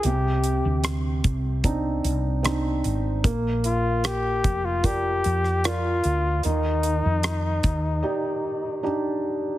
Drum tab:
HH |x-x-x-x-x-x-x-x-|x-x-x-x-x-x-x-x-|x-x-x-x---------|
SD |----r-------r---|----r------rr---|----r-----------|
BD |------o-o-------|o-----o-o-------|------o---------|